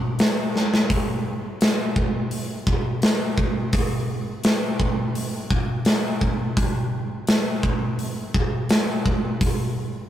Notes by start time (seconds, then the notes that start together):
0.19 snare, open hi-hat
0.56 snare
0.74 snare
0.90 kick, open hi-hat
1.61 snare, open hi-hat
1.96 kick
2.31 open hi-hat
2.67 kick
3.02 snare, open hi-hat
3.38 kick
3.73 kick, open hi-hat
4.44 snare, open hi-hat
4.80 kick
5.15 open hi-hat
5.50 kick
5.85 snare, open hi-hat
6.21 kick
6.57 kick, open hi-hat
7.27 snare, open hi-hat
7.63 kick
7.99 open hi-hat
8.34 kick
8.69 snare, open hi-hat
9.06 kick
9.41 kick, open hi-hat